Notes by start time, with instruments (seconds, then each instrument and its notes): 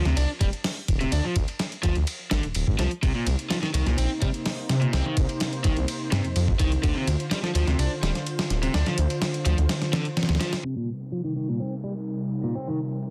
0.05 detuned saw bass D2, overdriven electric guitar C3, snare, closed hi-hat
0.17 detuned saw bass C2, overdriven electric guitar D4, closed hi-hat, ride
0.41 detuned saw bass D1, overdriven electric guitar G3, kick, closed hi-hat, ride
0.53 closed hi-hat
0.64 snare, closed hi-hat, open hi-hat
0.88 detuned saw bass D1, kick, closed hi-hat, ride
1.01 overdriven electric guitar C3, closed hi-hat
1.12 detuned saw bass D2, overdriven electric guitar D4, closed hi-hat, ride
1.24 overdriven electric guitar F3
1.36 detuned saw bass D2, kick, closed hi-hat, ride
1.48 closed hi-hat, ride
1.59 snare, closed hi-hat, ride
1.72 closed hi-hat
1.83 detuned saw bass D2, overdriven electric guitar F3, kick, closed hi-hat, ride
1.96 detuned saw bass D2, closed hi-hat
2.07 closed hi-hat, ride
2.31 detuned saw bass G#1, overdriven electric guitar D3, snare, closed hi-hat, ride
2.43 detuned saw bass D1, closed hi-hat
2.55 detuned saw bass D1, closed hi-hat, ride
2.67 detuned saw bass G#1, kick
2.79 detuned saw bass C2, overdriven electric guitar F3, snare, closed hi-hat, ride
2.91 closed hi-hat
3.03 detuned saw bass C2, overdriven electric guitar C3, analog synth pad C3 A#3 D#4 C5, kick, closed hi-hat, ride
3.15 overdriven electric guitar A#2
3.27 detuned saw bass C2, closed hi-hat, ride
3.39 closed hi-hat
3.50 overdriven electric guitar F3, snare, closed hi-hat, ride
3.62 overdriven electric guitar D#3, snare, closed hi-hat
3.74 detuned saw bass C2, overdriven electric guitar D#3, closed hi-hat, ride
3.86 detuned saw bass C2, overdriven electric guitar A#2, snare, closed hi-hat
3.97 detuned saw bass A#1, overdriven electric guitar C4, closed hi-hat, ride
4.22 detuned saw bass C3, overdriven electric guitar G3, kick, closed hi-hat, ride
4.34 closed hi-hat
4.46 snare, closed hi-hat, open hi-hat
4.69 detuned saw bass C3, snare, closed hi-hat, ride
4.81 overdriven electric guitar A#2, closed hi-hat
4.93 detuned saw bass C2, overdriven electric guitar C4, snare, closed hi-hat, ride
5.05 overdriven electric guitar D#3
5.17 detuned saw bass C2, kick, closed hi-hat, ride
5.29 closed hi-hat, ride
5.40 snare, closed hi-hat, ride
5.53 closed hi-hat
5.64 detuned saw bass C2, overdriven electric guitar D#3, kick, closed hi-hat, ride
5.77 detuned saw bass C2, closed hi-hat
5.88 closed hi-hat, ride
6.12 detuned saw bass G2, overdriven electric guitar C3, snare, closed hi-hat, ride
6.25 detuned saw bass F2, closed hi-hat
6.36 detuned saw bass F2, closed hi-hat, ride
6.48 kick
6.59 detuned saw bass C2, overdriven electric guitar D#3, kick, closed hi-hat, ride
6.72 closed hi-hat
6.83 detuned saw bass D2, overdriven electric guitar D3, analog synth pad D3 F4 C5, kick, closed hi-hat, ride
6.96 overdriven electric guitar C3
7.07 detuned saw bass D2, closed hi-hat, ride
7.20 closed hi-hat
7.31 overdriven electric guitar G3, snare, closed hi-hat, ride
7.43 overdriven electric guitar F3, snare, closed hi-hat
7.55 detuned saw bass D2, overdriven electric guitar F3, closed hi-hat, ride
7.67 detuned saw bass D2, overdriven electric guitar C3, snare, closed hi-hat
7.79 detuned saw bass C2, overdriven electric guitar D4, closed hi-hat, ride
8.02 detuned saw bass D1, overdriven electric guitar G3, snare, closed hi-hat, ride
8.15 snare, closed hi-hat
8.27 closed hi-hat, ride
8.39 snare, ride
8.50 detuned saw bass D1, snare, closed hi-hat
8.63 overdriven electric guitar C3, closed hi-hat, ride
8.74 detuned saw bass D2, overdriven electric guitar D4, snare, closed hi-hat, ride
8.86 overdriven electric guitar F3, snare, closed hi-hat
8.98 detuned saw bass D2, closed hi-hat, ride
9.10 closed hi-hat, ride
9.22 snare, closed hi-hat, ride
9.34 closed hi-hat
9.45 detuned saw bass D2, overdriven electric guitar F3, closed hi-hat, ride
9.58 detuned saw bass D2, closed hi-hat
9.69 snare, closed hi-hat, ride
9.82 snare, closed hi-hat
9.93 overdriven electric guitar D3, snare, closed hi-hat, ride
10.05 closed hi-hat
10.17 snare, closed hi-hat, ride
10.23 snare, ride
10.29 detuned saw bass D2, snare, ride
10.35 snare, ride
10.41 overdriven electric guitar F3, snare, closed hi-hat, ride
10.53 snare, closed hi-hat, ride
10.65 overdriven electric guitar C3, analog synth pad C3 G3 D#4 A#4, closed hi-hat, downlifter
10.77 overdriven electric guitar A#2
10.89 closed hi-hat
11.01 closed hi-hat
11.12 overdriven electric guitar F3, closed hi-hat
11.24 overdriven electric guitar D#3, closed hi-hat
11.36 overdriven electric guitar D#3, closed hi-hat
11.48 overdriven electric guitar A#2, closed hi-hat
11.60 overdriven electric guitar C4, closed hi-hat
11.84 overdriven electric guitar G3, closed hi-hat
11.96 closed hi-hat
12.08 closed hi-hat
12.31 closed hi-hat
12.44 overdriven electric guitar A#2, closed hi-hat
12.55 overdriven electric guitar C4, closed hi-hat
12.68 overdriven electric guitar D#3
12.79 closed hi-hat
12.91 closed hi-hat
13.03 closed hi-hat